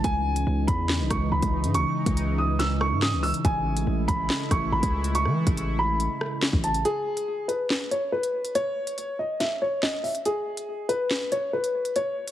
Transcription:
Already playing: C#3 G#3
0.04 C#2 E3 D#4 G#5, kick, closed hi-hat
0.36 closed hi-hat
0.47 C#2
0.67 E2 B5, kick, closed hi-hat
0.89 snare, clap
1.00 B1
1.10 C#2 C#6, kick, cross-stick, closed hi-hat
1.32 C#2 B5
1.42 C#2, kick, closed hi-hat
1.64 G#2, closed hi-hat
1.74 C#2 C#6, closed hi-hat
2.06 C#2, kick, closed hi-hat
2.17 closed hi-hat
2.38 D#6
2.59 E6, snare, closed hi-hat
2.81 C#6, cross-stick
2.92 G#2
3.02 D#6, snare, clap
3.13 C#2
3.23 E6, open hi-hat
3.34 closed hi-hat
3.44 A1 G#3 A3 E4 G#5, kick, closed hi-hat
3.77 closed hi-hat
3.87 A1
4.08 A1 B5, kick, closed hi-hat
4.30 snare, clap
4.51 A1 C#6, kick, cross-stick, closed hi-hat
4.72 G#1 B5
4.83 C#2, kick, closed hi-hat
5.04 closed hi-hat
5.15 C#6, closed hi-hat
5.25 E3, cross-stick
5.47 A1, kick, closed hi-hat
5.57 closed hi-hat
5.79 B5
6.00 closed hi-hat
6.21 cross-stick
6.42 snare, clap
6.53 A1, kick
6.64 A5, closed hi-hat
6.74 closed hi-hat
6.85 G#4, closed hi-hat
7.17 closed hi-hat
7.48 B4, closed hi-hat
7.70 snare, clap
7.91 C#5, closed hi-hat
8.12 B4
8.23 closed hi-hat
8.45 closed hi-hat
8.55 C#5, closed hi-hat
8.87 closed hi-hat
8.98 closed hi-hat
9.19 D#5
9.40 E5, snare, closed hi-hat
9.62 C#5
9.83 D#5, snare, clap
10.04 E5, open hi-hat
10.15 closed hi-hat
10.25 G#4, closed hi-hat
10.57 closed hi-hat
10.89 B4, closed hi-hat
11.11 snare, clap
11.32 C#5, closed hi-hat
11.53 B4
11.64 closed hi-hat
11.85 closed hi-hat
11.96 C#5, closed hi-hat
12.28 closed hi-hat

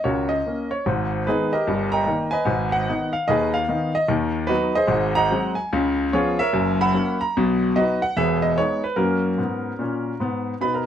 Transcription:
0.04 C#2 C#3 F#4 A#4 C#5
0.29 D#5
0.46 A#3 C#4
0.71 C#5
0.86 G#1 G#2
1.27 D#3 G#3 B3 D#4 G#4 B4
1.53 G4 A#4 D#5
1.67 G1 G2
1.92 D#5 G5 A#5
2.06 D#3 A#3 D#4
2.31 B4 D#5 G#5
2.45 G#1 G#2
2.72 F#5
2.89 D#3 B3 D#4
3.13 F5
3.28 D#2 D#3 G#4 B4 D#5
3.54 F5
3.68 D#3 B3 D#4
3.95 D#5
4.08 D#2 D#3
4.47 F#3 B3 D#4 F#4 B4
4.75 G#4 C5 D#5
4.87 G#1 G#2
5.15 D#5 F#5 A#5
5.31 F#3 G#3 C4
5.55 G#5
5.73 C#2 C#3
6.13 F3 B3 C#4 F4 G#4 C#5
6.39 A#4 C#5 E5
6.53 F#1 F#2
6.81 E5 F#5 B5
6.94 F#3 A#3 C#4
7.21 A#5
7.37 B1 B2
7.76 F#3 B3 D#4 F#4 B4 D#5
8.02 F#5
8.17 E1 E2 G#4 B4 E5
8.42 D#5
8.58 G#3 B3 D#4 C#5
8.84 B4
8.96 F#2 A#3 C#4 F#4 A#4
9.38 G#2 B3
9.79 A#2 C#4
10.20 G#2 B3
10.61 B2 D#4 B4 B5
10.74 A#4 A#5

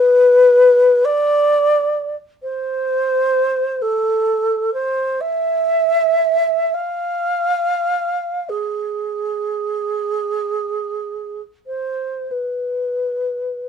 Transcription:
Already playing: B4
1.05 D5
2.43 C5
3.82 A4
4.74 C5
5.21 E5
6.74 F5
8.49 G#4
11.67 C5
12.31 B4

